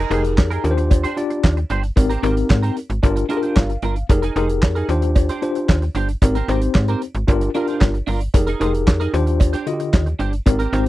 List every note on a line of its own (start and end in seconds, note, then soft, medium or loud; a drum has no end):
0.00 0.11 G#4 medium
0.00 0.12 A#4 medium
0.10 0.39 F1 loud
0.10 0.64 D#4 medium
0.10 0.22 D#4 medium
0.10 0.63 G4 medium
0.10 0.64 G#4 medium
0.10 0.23 G#4 medium
0.10 0.63 A#4 medium
0.10 0.23 C5 medium
0.10 closed hi-hat medium
0.25 closed hi-hat medium
0.37 0.59 F2 loud
0.37 muted clean electric guitar stroke soft
0.37 kick loud
0.37 snare loud
0.37 clap medium
0.37 cowbell medium
0.50 0.64 D#4 medium
0.50 0.65 G#4 medium
0.50 0.65 A#4 medium
0.50 closed hi-hat medium
0.64 1.06 D#2 medium
0.64 1.06 D4 medium
0.64 1.07 F4 medium
0.64 1.07 G4 medium
0.64 0.71 A#4 medium
0.64 muted clean electric guitar stroke soft
0.64 closed hi-hat medium
0.71 1.10 C5 medium
0.77 muted clean electric guitar stroke soft
0.77 closed hi-hat medium
0.91 muted clean electric guitar stroke soft
0.91 kick loud
0.91 closed hi-hat medium
0.91 cowbell medium
1.04 1.16 D4 medium
1.04 1.17 G4 medium
1.04 1.17 C5 medium
1.04 closed hi-hat medium
1.17 1.58 D4 medium
1.17 1.58 F4 medium
1.17 1.58 G4 medium
1.17 1.58 D5 medium
1.17 muted clean electric guitar stroke soft
1.17 closed hi-hat medium
1.30 muted clean electric guitar stroke soft
1.30 closed hi-hat soft
1.44 1.65 D#2 medium
1.44 muted clean electric guitar stroke soft
1.44 kick loud
1.44 snare loud
1.44 clap medium
1.44 cowbell medium
1.57 muted clean electric guitar stroke soft
1.57 closed hi-hat soft
1.70 1.91 G1 medium
1.70 1.85 D4 medium
1.70 1.83 G4 medium
1.70 1.82 C5 medium
1.70 closed hi-hat medium
1.83 muted clean electric guitar stroke soft
1.83 closed hi-hat medium
1.96 2.18 G#1 loud
1.96 2.10 C4 medium
1.96 2.10 D#4 medium
1.96 2.10 G4 medium
1.96 2.11 A#4 medium
1.96 muted clean electric guitar stroke soft
1.96 kick loud
1.96 closed hi-hat loud
1.96 cowbell medium
2.10 2.21 C4 medium
2.10 2.22 G4 medium
2.10 2.23 A#4 medium
2.10 closed hi-hat medium
2.22 2.44 G#1 loud
2.22 2.34 C4 medium
2.22 2.78 C4 medium
2.22 2.78 D#4 medium
2.22 2.35 G4 medium
2.22 2.78 G4 medium
2.22 2.78 A#4 medium
2.22 2.35 A#4 medium
2.22 closed hi-hat medium
2.36 muted clean electric guitar stroke soft
2.36 closed hi-hat medium
2.49 2.71 G#2 loud
2.49 muted clean electric guitar stroke soft
2.49 kick loud
2.49 snare loud
2.49 clap medium
2.49 cowbell medium
2.63 2.75 C4 medium
2.63 2.76 G4 medium
2.63 2.76 A#4 medium
2.63 closed hi-hat medium
2.76 muted clean electric guitar stroke soft
2.76 closed hi-hat medium
2.90 3.00 G#1 medium
2.90 muted clean electric guitar stroke medium
2.90 closed hi-hat medium
3.03 3.24 G1 loud
3.03 3.24 D4 medium
3.03 3.24 F4 medium
3.03 3.25 G4 medium
3.03 3.25 A#4 loud
3.03 muted clean electric guitar stroke soft
3.03 kick loud
3.03 closed hi-hat medium
3.03 cowbell medium
3.16 muted clean electric guitar stroke medium
3.16 closed hi-hat medium
3.29 3.43 D4 loud
3.29 3.71 D4 medium
3.29 3.42 F4 loud
3.29 3.71 F4 medium
3.29 3.71 G4 medium
3.29 3.37 G#4 medium
3.29 3.42 A#4 loud
3.29 closed hi-hat medium
3.37 3.74 A#4 medium
3.43 3.55 D4 medium
3.43 3.55 F4 soft
3.43 3.54 C5 medium
3.43 closed hi-hat soft
3.56 3.77 G1 medium
3.56 4.06 F5 medium
3.56 kick loud
3.56 snare loud
3.56 clap medium
3.56 cowbell medium
3.70 muted clean electric guitar stroke soft
3.70 closed hi-hat soft
3.82 4.04 G1 medium
3.82 3.97 D4 medium
3.82 3.96 F4 medium
3.82 3.95 A#4 loud
3.82 closed hi-hat medium
3.96 muted clean electric guitar stroke soft
3.96 closed hi-hat medium
4.09 4.30 F1 loud
4.09 4.23 D#4 medium
4.09 4.23 G4 medium
4.09 4.23 G#4 medium
4.09 4.23 A#4 medium
4.09 muted clean electric guitar stroke soft
4.09 kick loud
4.09 closed hi-hat loud
4.09 cowbell medium
4.22 4.35 D#4 medium
4.22 4.36 G#4 medium
4.22 4.37 A#4 medium
4.22 closed hi-hat medium
4.36 4.64 F1 loud
4.36 4.47 D#4 medium
4.36 4.89 D#4 medium
4.36 4.88 G4 medium
4.36 4.89 G#4 medium
4.36 4.48 G#4 medium
4.36 4.90 A#4 medium
4.36 4.48 C5 medium
4.36 closed hi-hat medium
4.49 muted clean electric guitar stroke soft
4.49 closed hi-hat medium
4.63 4.83 F2 loud
4.63 muted clean electric guitar stroke soft
4.63 kick loud
4.63 snare loud
4.63 clap medium
4.63 cowbell medium
4.75 4.89 D#4 medium
4.75 4.89 G#4 medium
4.75 4.90 A#4 medium
4.75 closed hi-hat medium
4.89 5.30 D#2 medium
4.89 5.32 D4 medium
4.89 5.32 F4 medium
4.89 5.32 G4 medium
4.89 5.32 C5 medium
4.89 muted clean electric guitar stroke soft
4.89 closed hi-hat medium
5.02 muted clean electric guitar stroke medium
5.02 closed hi-hat medium
5.15 muted clean electric guitar stroke soft
5.15 kick loud
5.15 closed hi-hat medium
5.15 cowbell medium
5.29 5.42 D4 medium
5.29 5.42 G4 medium
5.29 5.43 C5 medium
5.29 closed hi-hat medium
5.42 5.83 D4 medium
5.42 5.83 F4 medium
5.42 5.83 G4 medium
5.42 5.83 C5 medium
5.42 muted clean electric guitar stroke soft
5.42 closed hi-hat medium
5.55 muted clean electric guitar stroke soft
5.55 closed hi-hat soft
5.69 5.90 D#2 medium
5.69 muted clean electric guitar stroke soft
5.69 kick loud
5.69 snare loud
5.69 clap medium
5.69 cowbell medium
5.82 muted clean electric guitar stroke soft
5.82 closed hi-hat soft
5.95 6.16 G1 loud
5.95 6.10 D4 medium
5.95 6.09 G4 medium
5.95 6.08 C5 medium
5.95 closed hi-hat medium
6.09 muted clean electric guitar stroke soft
6.09 closed hi-hat medium
6.22 6.43 G#1 loud
6.22 6.36 C4 medium
6.22 6.36 D#4 medium
6.22 6.36 G4 medium
6.22 6.36 A#4 medium
6.22 muted clean electric guitar stroke soft
6.22 kick loud
6.22 closed hi-hat loud
6.22 cowbell medium
6.35 6.47 C4 medium
6.35 6.49 G4 medium
6.35 6.50 A#4 medium
6.35 closed hi-hat medium
6.48 6.69 G#1 loud
6.48 7.03 C4 medium
6.48 6.60 C4 medium
6.48 7.03 D#4 medium
6.48 7.03 G4 medium
6.48 6.60 G4 medium
6.48 6.61 A#4 medium
6.48 7.04 C5 medium
6.48 closed hi-hat medium
6.62 closed hi-hat medium
6.75 6.96 G#2 loud
6.75 muted clean electric guitar stroke soft
6.75 kick loud
6.75 snare loud
6.75 clap medium
6.75 cowbell medium
6.88 7.01 C4 medium
6.88 7.01 G4 medium
6.88 7.02 A#4 medium
6.88 closed hi-hat medium
7.02 muted clean electric guitar stroke soft
7.02 closed hi-hat medium
7.15 7.25 G#1 medium
7.15 muted clean electric guitar stroke soft
7.15 closed hi-hat medium
7.28 7.49 G1 loud
7.28 7.49 D4 medium
7.28 7.49 F4 medium
7.28 7.49 G4 medium
7.28 7.50 A#4 medium
7.28 muted clean electric guitar stroke soft
7.28 kick loud
7.28 closed hi-hat medium
7.28 cowbell medium
7.41 muted clean electric guitar stroke soft
7.41 closed hi-hat medium
7.55 7.69 D4 medium
7.55 7.96 D4 medium
7.55 7.96 F4 medium
7.55 7.68 F4 medium
7.55 7.96 G4 medium
7.55 7.96 A#4 medium
7.55 7.68 A#4 loud
7.55 closed hi-hat medium
7.67 7.80 D4 soft
7.67 7.80 F4 medium
7.67 7.79 C5 medium
7.67 closed hi-hat soft
7.81 8.02 G1 medium
7.81 kick loud
7.81 snare loud
7.81 clap medium
7.81 cowbell medium
7.94 muted clean electric guitar stroke soft
7.94 closed hi-hat soft
8.07 8.28 G1 medium
8.07 8.22 D4 medium
8.07 8.21 F4 medium
8.07 8.20 A#4 medium
8.07 open hi-hat medium
8.21 muted clean electric guitar stroke soft
8.21 closed hi-hat medium
8.34 8.55 F1 loud
8.34 8.48 D#4 medium
8.34 8.48 G4 medium
8.34 8.48 G#4 medium
8.34 8.48 A#4 medium
8.34 muted clean electric guitar stroke soft
8.34 kick loud
8.34 closed hi-hat loud
8.34 cowbell medium
8.47 8.59 D#4 medium
8.47 8.60 G#4 medium
8.47 8.62 A#4 medium
8.47 closed hi-hat medium
8.60 8.89 F1 loud
8.60 9.13 D#4 medium
8.60 8.72 D#4 medium
8.60 9.13 G4 medium
8.60 9.14 G#4 medium
8.60 8.72 G#4 medium
8.60 9.14 A#4 medium
8.60 8.73 C5 medium
8.60 closed hi-hat medium
8.75 closed hi-hat medium
8.87 9.08 F2 loud
8.87 muted clean electric guitar stroke soft
8.87 kick loud
8.87 snare loud
8.87 clap medium
8.87 cowbell medium
9.00 9.13 D#4 medium
9.00 9.14 G#4 medium
9.00 9.14 A#4 medium
9.00 closed hi-hat medium
9.13 9.55 D#2 loud
9.13 9.56 D4 medium
9.13 9.56 F4 medium
9.13 9.56 G4 medium
9.13 9.57 C5 medium
9.13 muted clean electric guitar stroke soft
9.13 closed hi-hat medium
9.27 muted clean electric guitar stroke soft
9.27 closed hi-hat medium
9.40 muted clean electric guitar stroke soft
9.40 kick loud
9.40 closed hi-hat medium
9.40 cowbell medium
9.53 9.66 D4 medium
9.53 9.67 G4 medium
9.53 9.67 C5 medium
9.53 closed hi-hat medium
9.66 10.08 D3 medium
9.66 10.08 F4 medium
9.66 9.73 F#4 medium
9.66 10.08 D#5 medium
9.66 muted clean electric guitar stroke soft
9.66 closed hi-hat medium
9.73 10.11 G4 medium
9.80 muted clean electric guitar stroke medium
9.80 closed hi-hat soft
9.93 10.14 D#2 medium
9.93 muted clean electric guitar stroke soft
9.93 kick loud
9.93 snare loud
9.93 clap medium
9.93 cowbell medium
10.06 muted clean electric guitar stroke soft
10.06 closed hi-hat soft
10.19 10.40 G1 medium
10.19 10.34 D4 medium
10.19 10.33 G4 medium
10.19 10.31 C5 medium
10.19 closed hi-hat medium
10.33 muted clean electric guitar stroke soft
10.33 closed hi-hat medium
10.46 10.67 G#1 loud
10.46 10.60 C4 medium
10.46 10.60 D#4 medium
10.46 10.60 G4 medium
10.46 10.60 A#4 medium
10.46 muted clean electric guitar stroke medium
10.46 kick loud
10.46 closed hi-hat loud
10.46 cowbell medium
10.59 10.71 C4 medium
10.59 10.72 G4 medium
10.59 10.73 A#4 medium
10.59 closed hi-hat medium
10.72 10.89 G#1 loud
10.72 10.84 C4 medium
10.72 10.89 C4 medium
10.72 10.89 D#4 medium
10.72 10.89 G4 medium
10.72 10.85 G4 medium
10.72 10.84 A#4 medium
10.72 10.89 C5 medium
10.72 closed hi-hat medium